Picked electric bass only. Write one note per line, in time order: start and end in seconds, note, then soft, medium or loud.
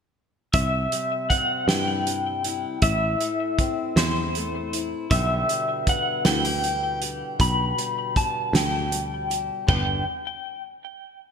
0.54 0.86 C2 medium
1.68 2.64 G2 medium
2.82 3.14 A1 medium
3.96 4.93 E2 medium
5.11 5.43 B1 medium
6.26 7.22 D2 medium
7.40 7.72 B1 medium
8.53 9.50 D2 medium
9.69 10.04 G1 medium